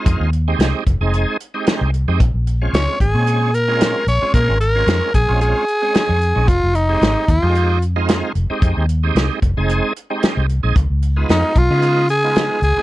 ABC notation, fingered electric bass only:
X:1
M:4/4
L:1/16
Q:"Swing 16ths" 1/4=112
K:Fm
V:1 name="Fingered electric bass" clef=bass
F,, E,,3 C,, z F,,, F,,,2 z4 C,,2 F,, | B,,, B,,,3 D,, z A,,, B,,6- B,, B,,, z | B,, A,,,3 F,, z B,,, B,,,2 z4 F,,2 B,,, | F,,, F,,,3 A,,, z E,, F,,6- F,, F,,, z |
F,, E,,3 C,, z F,,, F,,,2 z4 C,,2 B,,, | D,, D,,3 F,, z _C,, D,6- D, D,, z |]